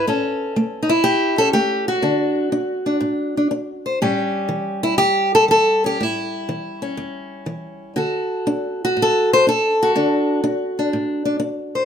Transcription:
0.07 A2 C#4 A4
0.56 A3
0.83 D#4
0.89 E4
1.04 E2 G4
1.38 C#4 A4
1.53 A3 G4
1.88 F#4
2.02 D3 D4
2.52 D4
2.86 D4
3.00 A2
3.37 D4
3.51 D4
3.86 C5
4.02 A2 G3 C#4 G4
4.49 E3
4.83 E4
4.98 E2 G4
5.35 A4
5.48 E3 A4
5.84 C#4 G4
6.01 A2 E4
6.49 E3
6.82 C#4
6.97 E2
7.46 E3
7.96 D3 F#4 A4
8.47 D4
8.85 F#4
8.97 A2
9.02 A4
9.33 C5
9.47 D4 A4
9.83 F#4
9.95 D3 D4
10.44 D4
10.79 D4
10.93 A2
11.25 D4
11.40 D4
11.75 C5

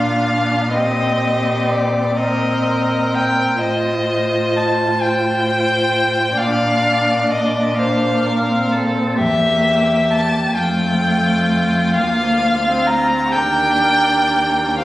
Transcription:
Already playing: A#2 D4 F4 F5
0.73 C4 G4 D#5
1.69 D5
2.17 C4 A#4 D#5
3.14 G5
3.61 A2 F4 C5 D#5
4.56 A5
5.01 C5 G5
6.37 A#2 D4 D5 F5
7.31 D#5
7.78 D4 C5 F5
8.26 A#4
8.50 C4
8.72 A4
9.19 E2 A#3 G4 E5
10.11 A5
10.54 F2 A3 F4 G5
11.94 D2 A#3 F5
12.67 C4
12.87 A#5
13.32 D#2 D4 A#4 G5
14.79 C4 C5 F5

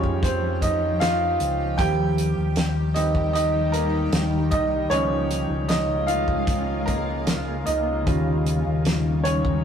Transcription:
Already playing: F2 F3 G3 G#3 C#4 D#4 F4 G4 C#5 D#5, downlifter
0.04 kick
0.23 C4 C5, kick, closed hi-hat
0.62 D#4 D#5, kick, closed hi-hat
1.00 F4 F5, snare, closed hi-hat
1.40 C#2, closed hi-hat
1.78 D#2 D#3 G3 A#3 C4 G4 G5, kick, closed hi-hat
2.18 closed hi-hat
2.37 D#2
2.56 snare, closed hi-hat
2.94 G3 A#3 C4 D#4 D#5, closed hi-hat
3.15 kick
3.33 D#4 D#5, closed hi-hat
3.72 A#3 A#4, closed hi-hat
4.12 D#2, snare, closed hi-hat
4.51 C2 D#4 D#5, kick, closed hi-hat
4.90 C#2 C#3 F3 G#3 A#3 C#4 D#4 F4 C#5, closed hi-hat
5.31 closed hi-hat
5.49 C#2
5.68 D#4 D#5, snare, closed hi-hat
6.07 F4 F5, closed hi-hat
6.28 kick
6.47 kick, closed hi-hat
6.86 A#3 A#4, kick, closed hi-hat
7.27 snare, closed hi-hat
7.66 C#2 D#4 D#5, closed hi-hat
8.06 D#2 G3 A#3 C#4 D#4 F4, kick, closed hi-hat
8.46 closed hi-hat
8.66 D#2
8.85 snare, closed hi-hat
9.24 C#4 C#5, closed hi-hat
9.45 kick

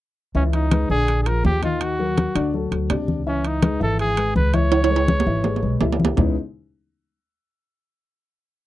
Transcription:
0.35 C#2 E3 C#4 E4 E5, high conga
0.53 D#4, high conga, high timbale
0.71 G#3 G#4 B4, high conga, high timbale
0.90 A#1 D3 D4 G#4 D5, high conga
1.08 high conga, high timbale
1.23 F3 F4 G#4 A#4, high conga, high timbale
1.27 G#4
1.44 D#2 G4, high conga, low timbale
1.62 D#3 D#4 F4 D#5, high conga, high timbale
1.81 F#4, high conga, high timbale
1.99 F#3 F#4 A#4, high conga
2.17 high conga, high timbale
2.35 D2 D3 D4 D5, high conga, high timbale
2.54 F#3 F#4 A4, high conga
2.71 D2 F#3 F#4 A4, high conga, high timbale
2.90 C#2 C3 D4 D5, high conga, high timbale, low timbale
3.08 high conga
3.26 E3 C#4 E4 E5, high conga
3.44 D#4, high conga, high timbale
3.62 G#3 G#4 B4, high conga, high timbale
3.80 G#1 E3 E4 A4 E5, high conga
3.99 G#4, high conga, high timbale
4.17 G#3 G#4 B4, high conga, high timbale
4.36 C#2 B4, high conga
4.53 E3 E4 C#5 E5, high conga, high timbale
4.72 high conga, high timbale
4.84 high timbale
4.90 G#3 G#4 B4, high conga
4.96 high timbale
5.08 high conga
5.20 low timbale
5.26 G#1 E3 E4 E5, high conga
5.44 G#3 G#4 B4, high conga, low timbale
5.56 low timbale
5.63 B1 G#3 G#4 B4, high conga
5.81 C#2 E3 E4 E5, high conga, low timbale
5.93 low timbale
6.00 high conga
6.05 low timbale
6.17 C#2 C#3 G#3 B3 C#4 D#4 E4, low conga, low timbale

